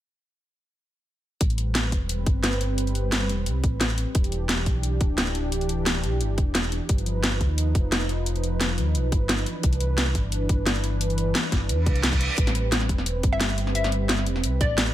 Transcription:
1.41 1.94 A1 medium
1.41 4.12 G3 medium
1.41 4.12 C4 medium
1.41 4.12 B4 medium
1.41 kick loud
1.41 closed hi-hat medium
1.50 closed hi-hat soft
1.58 closed hi-hat medium
1.75 snare loud
1.75 closed hi-hat medium
1.92 2.25 E1 medium
1.92 kick medium
1.92 closed hi-hat medium
2.09 closed hi-hat medium
2.26 3.31 G1 medium
2.26 kick loud
2.26 closed hi-hat medium
2.44 snare loud
2.44 closed hi-hat medium
2.53 closed hi-hat soft
2.61 closed hi-hat medium
2.78 closed hi-hat medium
2.87 closed hi-hat soft
2.95 closed hi-hat medium
3.12 snare loud
3.12 closed hi-hat medium
3.29 3.48 E1 medium
3.29 closed hi-hat medium
3.46 3.65 C2 medium
3.46 closed hi-hat medium
3.64 4.06 A1 medium
3.64 kick loud
3.64 closed hi-hat medium
3.81 snare loud
3.81 closed hi-hat medium
3.90 closed hi-hat soft
3.98 closed hi-hat medium
4.15 4.68 E1 medium
4.15 6.86 E3 medium
4.15 6.87 D4 medium
4.15 6.87 G4 medium
4.15 kick loud
4.15 closed hi-hat medium
4.24 closed hi-hat soft
4.32 closed hi-hat medium
4.49 snare loud
4.49 closed hi-hat medium
4.66 4.99 B1 medium
4.66 kick medium
4.66 closed hi-hat medium
4.83 closed hi-hat medium
5.01 6.05 D1 medium
5.01 kick loud
5.01 closed hi-hat medium
5.18 snare loud
5.18 closed hi-hat medium
5.27 closed hi-hat soft
5.35 closed hi-hat medium
5.52 closed hi-hat medium
5.61 closed hi-hat soft
5.69 closed hi-hat medium
5.86 snare loud
5.86 closed hi-hat medium
6.03 6.22 B1 medium
6.03 closed hi-hat medium
6.21 6.39 G1 medium
6.21 closed hi-hat medium
6.38 6.80 E1 medium
6.38 kick loud
6.38 closed hi-hat medium
6.55 snare loud
6.55 closed hi-hat medium
6.64 closed hi-hat soft
6.72 closed hi-hat medium
6.89 7.42 G1 medium
6.89 9.44 F3 medium
6.89 9.44 D#4 medium
6.89 14.94 B4 medium
6.89 kick loud
6.89 closed hi-hat medium
6.98 closed hi-hat soft
7.06 closed hi-hat medium
7.24 snare loud
7.24 closed hi-hat medium
7.41 7.74 D#2 medium
7.41 kick medium
7.41 closed hi-hat medium
7.58 closed hi-hat medium
7.75 8.79 F1 loud
7.75 kick loud
7.75 closed hi-hat medium
7.92 snare loud
7.92 closed hi-hat medium
8.01 closed hi-hat soft
8.09 closed hi-hat medium
8.26 closed hi-hat medium
8.36 closed hi-hat soft
8.44 closed hi-hat medium
8.61 snare loud
8.61 closed hi-hat medium
8.78 8.97 D#2 medium
8.78 closed hi-hat medium
8.95 9.14 B1 medium
8.95 closed hi-hat medium
9.12 9.45 G1 medium
9.12 kick medium
9.12 closed hi-hat medium
9.29 snare loud
9.29 closed hi-hat medium
9.38 closed hi-hat soft
9.46 12.35 E3 medium
9.46 12.35 D4 medium
9.46 closed hi-hat medium
9.63 10.17 C2 loud
9.63 kick loud
9.63 closed hi-hat medium
9.73 closed hi-hat soft
9.80 closed hi-hat medium
9.98 snare loud
9.98 closed hi-hat medium
10.15 10.48 G1 medium
10.15 kick medium
10.15 closed hi-hat medium
10.32 closed hi-hat medium
10.49 11.34 G1 medium
10.49 kick medium
10.49 closed hi-hat medium
10.67 snare loud
10.67 closed hi-hat medium
10.76 closed hi-hat soft
10.84 closed hi-hat medium
11.01 closed hi-hat medium
11.10 closed hi-hat soft
11.18 closed hi-hat medium
11.35 snare loud
11.35 closed hi-hat medium
11.52 11.71 G1 medium
11.52 kick medium
11.52 snare soft
11.52 closed hi-hat medium
11.69 11.88 E2 medium
11.69 closed hi-hat medium
11.69 reverse cymbal medium
11.86 12.28 C2 medium
11.86 kick medium
11.86 closed hi-hat medium
11.96 closed hi-hat soft
12.03 snare loud
12.03 closed hi-hat medium
12.13 kick medium
12.13 closed hi-hat soft
12.21 closed hi-hat medium
12.38 12.91 A1 medium
12.38 14.94 G3 medium
12.38 14.94 C4 medium
12.38 kick loud
12.38 closed hi-hat medium
12.47 snare medium
12.47 closed hi-hat soft
12.55 closed hi-hat medium
12.72 snare loud
12.72 closed hi-hat medium
12.81 snare soft
12.89 13.22 E1 medium
12.89 kick medium
12.89 closed hi-hat medium
12.98 snare soft
13.06 closed hi-hat medium
13.23 14.28 G1 medium
13.23 kick loud
13.23 closed hi-hat medium
13.33 13.53 E5 medium
13.41 snare loud
13.41 closed hi-hat medium
13.50 closed hi-hat soft
13.58 closed hi-hat medium
13.67 snare soft
13.75 13.96 E5 medium
13.75 closed hi-hat medium
13.84 snare medium
13.84 closed hi-hat soft
13.92 closed hi-hat medium
14.09 snare loud
14.09 closed hi-hat medium
14.19 snare soft
14.26 14.45 E1 medium
14.26 closed hi-hat medium
14.36 snare soft
14.44 14.62 C2 medium
14.44 closed hi-hat medium
14.61 14.94 A1 medium
14.61 14.87 D5 medium
14.61 kick loud
14.61 closed hi-hat medium
14.78 snare loud
14.78 closed hi-hat medium
14.87 closed hi-hat soft

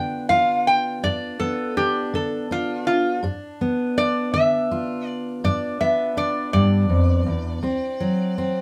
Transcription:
0.00 0.59 D3 medium
0.00 1.39 B3 medium
0.00 1.04 D4 medium
0.00 0.29 F4 medium
0.00 0.27 G5 medium
0.29 3.19 F4 medium
0.29 0.65 F5 medium
0.67 1.02 G5 medium
1.03 1.69 G2 medium
1.03 1.77 D4 medium
1.03 1.39 D5 medium
1.40 3.19 B3 medium
1.40 1.75 A4 medium
1.77 2.51 D4 medium
1.77 2.12 G4 medium
2.14 2.79 D3 medium
2.14 2.49 A4 medium
2.51 3.23 D4 soft
2.51 2.86 F4 medium
2.87 3.22 F4 medium
3.23 3.89 G2 medium
3.23 3.97 D4 medium
3.61 5.79 B3 medium
3.97 5.44 D4 medium
3.97 4.33 D5 medium
4.33 4.99 D3 medium
4.33 5.07 E5 medium
4.71 7.59 F4 medium
5.07 5.40 D5 medium
5.44 6.10 G2 medium
5.44 6.17 D4 medium
5.44 5.79 D5 medium
5.81 7.59 B3 medium
5.81 6.16 E5 medium
6.17 7.63 D4 medium
6.17 6.52 D5 medium
6.53 6.89 G2 medium
6.53 8.62 D5 medium
6.89 7.26 F2 medium
7.26 7.62 E2 medium
7.63 8.29 D2 medium
7.63 8.38 C4 medium
8.00 8.62 F#3 medium
8.38 8.62 C4 medium

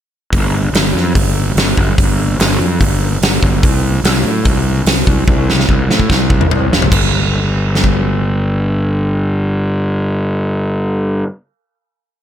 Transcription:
0.32 0.71 G1 loud
0.32 kick loud
0.32 open hi-hat medium
0.73 0.93 G1 medium
0.73 snare loud
0.73 open hi-hat medium
0.86 snare soft
0.94 1.13 F2 medium
0.94 snare soft
1.15 1.54 G1 medium
1.15 kick medium
1.15 open hi-hat medium
1.55 1.75 G1 medium
1.55 snare loud
1.55 open hi-hat medium
1.77 1.97 G1 medium
1.77 kick medium
1.98 2.37 G1 loud
1.98 kick loud
1.98 open hi-hat medium
2.39 2.58 G1 medium
2.39 snare loud
2.39 open hi-hat medium
2.52 snare soft
2.59 2.79 F2 medium
2.80 3.19 G1 medium
2.80 kick medium
2.80 open hi-hat medium
3.22 3.41 G1 medium
3.22 snare loud
3.22 open hi-hat medium
3.43 3.62 G1 medium
3.43 kick medium
3.63 4.02 C2 loud
3.63 kick loud
3.63 open hi-hat medium
4.04 4.23 C2 loud
4.04 snare loud
4.04 open hi-hat medium
4.16 snare soft
4.24 4.43 A2 medium
4.45 4.84 C2 loud
4.45 kick medium
4.45 open hi-hat medium
4.85 5.05 C2 medium
4.85 snare loud
4.85 open hi-hat medium
5.07 5.26 C2 medium
5.07 kick medium
5.28 5.66 C2 loud
5.28 kick loud
5.28 high tom medium
5.50 snare medium
5.60 snare medium
5.69 5.88 C2 medium
5.69 kick medium
5.88 6.08 A2 medium
5.88 snare medium
6.00 kick medium
6.10 6.48 C2 medium
6.10 kick medium
6.10 snare medium
6.30 kick medium
6.41 mid tom medium
6.50 6.69 C2 medium
6.50 floor tom loud
6.70 6.89 F1 medium
6.70 snare loud
6.82 floor tom medium
6.92 11.23 G1 loud
6.92 kick loud
6.92 crash medium
7.75 snare medium
7.84 kick medium

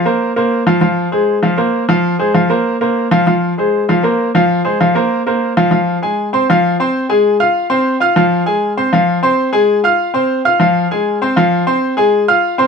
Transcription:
0.05 0.30 A#3 medium
0.05 0.31 A#4 medium
0.05 0.31 C5 medium
0.36 0.61 A#3 medium
0.36 0.61 A#4 medium
0.36 0.62 C5 medium
0.67 0.79 F3 medium
0.67 0.79 F4 medium
0.67 0.79 F5 medium
0.81 1.07 F3 medium
0.81 1.07 F4 medium
0.81 1.07 F5 medium
1.12 1.37 G#3 medium
1.12 1.37 G#4 medium
1.12 1.37 C5 medium
1.43 1.55 F3 medium
1.43 1.56 F4 medium
1.43 1.56 F5 medium
1.58 1.83 A#3 medium
1.58 1.83 A#4 medium
1.58 1.83 C5 medium
1.89 2.14 F3 medium
1.89 2.14 F4 medium
1.89 2.14 F5 medium
2.19 2.32 G#3 medium
2.19 2.32 G#4 medium
2.19 2.32 C5 medium
2.34 2.47 F3 medium
2.34 2.47 F4 medium
2.34 2.47 F5 medium
2.50 2.75 A#3 medium
2.50 2.75 A#4 medium
2.50 2.75 C5 medium
2.81 3.06 A#3 medium
2.81 3.06 A#4 medium
2.81 3.06 C5 medium
3.11 3.24 F3 medium
3.11 3.24 F4 medium
3.11 3.24 F5 medium
3.27 3.52 F3 medium
3.27 3.52 F4 medium
3.27 3.52 F5 medium
3.58 3.83 G#3 medium
3.58 3.83 G#4 medium
3.58 3.83 C5 medium
3.89 4.01 F3 medium
3.89 4.01 F4 medium
3.89 4.01 F5 medium
4.03 4.28 A#3 medium
4.03 4.29 A#4 medium
4.03 4.29 C5 medium
4.35 4.59 F3 medium
4.35 4.60 F4 medium
4.35 4.60 F5 medium
4.65 4.77 G#3 medium
4.65 4.77 G#4 medium
4.65 4.77 C5 medium
4.80 4.93 F3 medium
4.80 4.93 F4 medium
4.80 4.93 F5 medium
4.95 5.20 A#3 medium
4.95 5.20 A#4 medium
4.95 5.21 C5 medium
5.26 5.51 A#3 medium
5.26 5.51 A#4 medium
5.26 5.52 C5 medium
5.57 5.69 F3 medium
5.57 5.69 F4 medium
5.57 5.69 F5 medium
5.71 5.96 F3 medium
5.71 5.96 F4 medium
5.71 5.97 F5 medium
6.02 6.27 G#3 medium
6.02 6.27 G#4 medium
6.02 6.28 G#5 medium
6.33 6.45 C4 medium
6.33 6.46 C5 medium
6.33 6.46 C6 medium
6.50 6.74 F3 medium
6.50 6.74 F4 medium
6.50 6.74 F5 medium
6.80 7.04 C4 medium
6.80 7.04 C5 medium
6.80 7.05 C6 medium
7.09 7.34 G#3 medium
7.09 7.35 G#4 medium
7.09 7.34 G#5 medium
7.40 7.65 F4 medium
7.40 7.65 F5 medium
7.40 7.65 F6 medium
7.70 7.95 C4 medium
7.70 7.95 C5 medium
7.70 7.95 C6 medium
8.00 8.13 F4 medium
8.00 8.13 F5 medium
8.00 8.14 F6 medium
8.16 8.41 F3 medium
8.16 8.41 F4 medium
8.16 8.42 F5 medium
8.46 8.71 G#3 medium
8.46 8.71 G#4 medium
8.46 8.72 G#5 medium
8.77 8.90 C4 medium
8.77 8.90 C5 medium
8.77 8.90 C6 medium
8.93 9.18 F3 medium
8.93 9.18 F4 medium
8.93 9.18 F5 medium
9.23 9.48 C4 medium
9.23 9.48 C5 medium
9.23 9.48 C6 medium
9.53 9.78 G#3 medium
9.53 9.78 G#4 medium
9.53 9.78 G#5 medium
9.84 10.09 F4 medium
9.84 10.09 F5 medium
9.84 10.10 F6 medium
10.14 10.39 C4 medium
10.14 10.40 C5 medium
10.14 10.40 C6 medium
10.45 10.58 F4 medium
10.45 10.58 F5 medium
10.45 10.58 F6 medium
10.60 10.85 F3 medium
10.60 10.86 F4 medium
10.60 10.86 F5 medium
10.91 11.16 G#3 medium
10.91 11.16 G#4 medium
10.91 11.17 G#5 medium
11.22 11.34 C4 medium
11.22 11.34 C5 medium
11.22 11.35 C6 medium
11.36 11.62 F3 medium
11.36 11.62 F4 medium
11.36 11.62 F5 medium
11.67 11.92 C4 medium
11.67 11.92 C5 medium
11.67 11.92 C6 medium
11.97 12.23 G#3 medium
11.97 12.23 G#4 medium
11.97 12.23 G#5 medium
12.28 12.54 F4 medium
12.28 12.54 F5 medium
12.28 12.54 F6 medium
12.58 12.67 C4 medium
12.58 12.67 C5 medium
12.58 12.67 C6 medium

